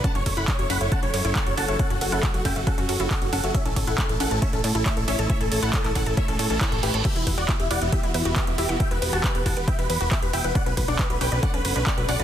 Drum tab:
CC |----------------|----------------|----------------|----------------|
RD |--x---x---x---x-|--x---x---x---x-|--x---x---x---x-|--x---x---x---x-|
HH |xxoxxxoxxxoxxxox|xxoxxxoxxxoxxxox|xxoxxxoxxxoxxxox|xxoxxxoxxxoxxxox|
CP |----x-------x---|----x-------x---|----x-------x---|----xx------x---|
BD |o-o-o---o---o---|o---o-o-o---o---|o-o-o---o---o---|o---o-o-o---o---|

CC |x---------------|----------------|----------------|
RD |--x---x---x---x-|--x---x---x---x-|--x---x---x---x-|
HH |xxoxxxoxxxoxxxox|xxoxxxoxxxoxxxox|xxoxxxoxxxoxxxox|
CP |----x-------x---|----x-------x---|----x-------x---|
BD |o-o-o---o---o---|o---o-o-o---o---|o-o-o---o---o---|